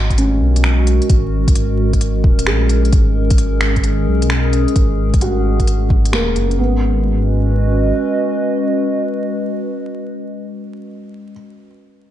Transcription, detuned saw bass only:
Already playing: G#1
0.41 B1
1.10 G#1
2.24 D#1
2.47 A#1
2.93 G#1
4.08 B1
4.76 G#1
6.13 D#1
6.36 F#1
6.59 G#1

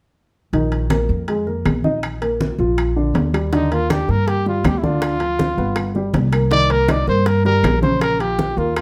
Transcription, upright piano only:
0.53 D#3 D#4
0.91 A#3 A#4
1.28 G#3 G#4
1.47 A#3 A#4
1.84 D#4 D#5
2.21 A#3 A#4
2.59 F3 F4
2.96 D3 D4
3.34 G3 G4
3.53 D3 D4
3.71 A#3 A#4
3.90 D4 D5
4.08 A#3 A#4
4.46 G3 G4
4.83 D3 D4
5.21 F3 F4
5.58 B3 B4
5.96 G3 G4
6.33 A#3 A#4
6.51 D#3 D#4
6.70 A#3 A#4
6.88 D#4 D#5
7.08 A#3 A#4
7.45 G3 G4
7.83 C#3 C#4
8.20 F3 F4
8.57 A#3 A#4

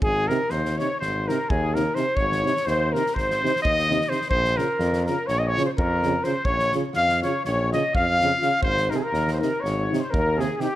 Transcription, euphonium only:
0.30 C3
0.80 C3
1.29 C3
1.75 C3
1.97 C3
2.45 C3
2.94 C3
3.43 C3
3.90 C3
4.09 C3
4.57 C#3
5.08 C#3
5.58 C#3
6.05 C#3
6.25 C#3
6.75 C#3
7.25 C#3
7.75 C#3
8.23 C#3
8.42 C#3
8.93 C3
9.42 C3
9.92 C3
10.38 C3
10.59 C3

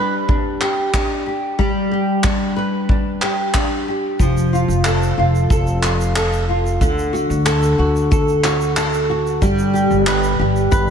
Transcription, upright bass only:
4.19 F1
4.68 F1
5.18 F1
5.50 F1
6.81 D2
7.30 D2
7.79 D2
9.42 G1
9.91 G1
10.39 G1
10.72 G1

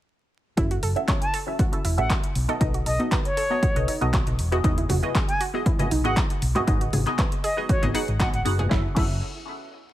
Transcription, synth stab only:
0.57 C#4 E4 F#4 A4 E5
0.96 C#4 E4 F#4 A4 E5
1.47 C#4 E4 F#4 A4 E5
1.72 C#4 E4 F#4 A4 E5
1.98 C#4 E4 F#4 A4 E5
2.48 B3 D#4 F#4 A4 D#5
2.60 B3 D#4 F#4 A4 D#5
2.99 B3 D#4 F#4 A4 D#5
3.50 B3 D#4 F#4 A4 D#5
3.75 B3 D#4 F#4 A4 D#5
4.01 B3 D#4 F#4 A4 D#5
4.52 B3 E4 F#4 G#4 D#5
4.64 B3 E4 F#4 G#4 D#5
5.03 B3 E4 F#4 G#4 D#5
5.53 B3 E4 F#4 G#4 D#5
5.79 B3 E4 F#4 G#4 D#5
6.04 B3 E4 F#4 G#4 D#5
6.55 B3 E4 F#4 G#4 D#5
6.67 B3 D#4 F#4 G#4 D#5
7.06 B3 D#4 F#4 G#4 D#5
7.57 B3 D#4 F#4 G#4 D#5
7.82 B3 D#4 F#4 G#4 D#5
7.94 B3 D#4 F#4 G#4 F#5
8.20 B3 D#4 F#4 G#4 D#5
8.45 B3 D#4 F#4 G#4 F#5
8.69 C#4 E4 F#4 A4 E5
8.95 C#4 E4 F#4 A4 E5

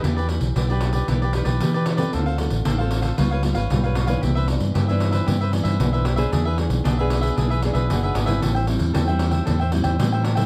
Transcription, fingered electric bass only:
0.03 E2
0.40 B1
0.56 B1
1.08 B1
1.45 B1
1.61 E3
2.13 D2
2.50 A1
2.65 A1
3.18 C#2
3.55 G#1
3.70 B1
4.23 C2
4.60 G2
4.75 G2
5.27 G2
5.64 G2
5.80 B1
6.32 E2
6.69 B1
6.85 B1
7.37 B1
7.74 B1
7.89 F#1
8.15 G#1
8.42 A1
8.79 E2
8.95 E2
9.47 E2
9.85 E2
10.00 A2

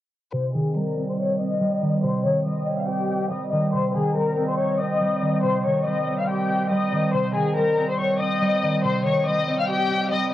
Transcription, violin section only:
0.33 C5 C6
0.54 G#4 G#5
0.75 A#4 A#5
1.09 C5 C6
1.18 C#5 C#6
1.39 D#5 D#6
2.03 C5 C6
2.25 C#5 C#6
2.46 D#5 D#6
2.78 F5 F6
2.88 G4 G5
3.31 D#5 D#6
3.52 D#5 D#6
3.73 C5 C6
3.95 G#4 G#5
4.16 A#4 A#5
4.48 C5 C6
4.58 C#5 C#6
4.80 D#5 D#6
5.43 C5 C6
5.65 C#5 C#6
5.87 D#5 D#6
6.19 F5 F6
6.29 G4 G5
6.71 D#5 D#6
7.13 C5 C6
7.35 G#4 G#5
7.56 A#4 A#5
7.89 C5 C6
7.99 C#5 C#6
8.20 D#5 D#6
8.84 C5 C6
9.06 C#5 C#6
9.27 D#5 D#6
9.59 F5 F6
9.69 G4 G5
10.12 D#5 D#6

